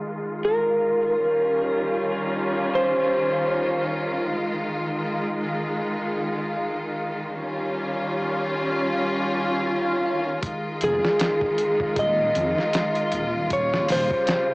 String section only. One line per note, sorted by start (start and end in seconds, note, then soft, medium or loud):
0.00 10.39 D#3 medium
0.00 1.17 G#3 medium
0.00 7.31 F4 medium
1.19 4.24 G3 medium
1.19 4.24 C#4 medium
4.27 7.32 G#3 medium
7.35 10.40 G3 medium
7.35 10.40 C#4 medium
7.35 10.39 F4 medium
10.42 13.47 D#3 medium
10.42 13.47 G#3 medium
10.42 14.54 F4 medium
13.50 14.54 C#3 medium
13.50 14.54 G3 medium